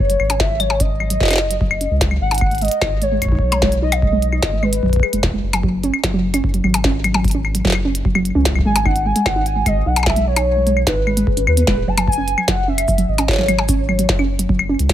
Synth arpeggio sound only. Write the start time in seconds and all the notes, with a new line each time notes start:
0.10 F#3
0.30 C#4
0.50 F#3
0.60 F#3
0.80 C#4
1.00 F#3
1.10 F#3
1.31 C#4
1.51 F#3
1.61 F#3
1.81 C#4
2.01 F#3
2.11 F#3
2.31 D#4
2.52 G#3
2.62 G#3
2.82 D#4
3.02 G#3
3.12 G#3
3.32 D#4
3.52 G#3
3.62 G#3
3.82 D#4
4.02 G#3
4.13 G#3
4.33 D#4
4.53 G#3
4.63 G#3
4.83 F#3
5.03 G#4
5.13 G#3
5.33 G#3
5.53 F#3
5.63 F#3
5.84 C#4
6.04 F#3
6.14 F#3
6.34 C#4
6.54 F#3
6.64 F#3
6.84 C#4
7.04 F#3
7.14 F#3
7.35 C#4
7.55 F#3
7.65 F#3
7.85 C#4
8.05 F#3
8.15 F#3
8.35 C#4
8.55 F#3
8.65 G#3
8.85 D#4
9.06 G#3
9.16 G#3
9.36 D#4
9.56 G#3
9.66 G#3
9.86 D#4
10.06 G#3
10.16 G#3
10.36 D#4
10.57 G#3
10.67 G#3
10.87 D#4
11.07 G#3
11.17 G#3
11.27 G#4
11.37 C#4
11.57 B3
11.67 G#3
11.77 G#4
11.87 F#3
11.97 F#3
12.18 C#4
12.38 F#3
12.48 F#3
12.68 C#4
12.88 F#3
12.98 F#3
13.18 C#4
13.38 F#3
13.49 F#3
13.69 C#4
13.89 F#3
13.99 F#3
14.19 C#4
14.39 F#3
14.49 F#3
14.69 C#4
14.90 F#3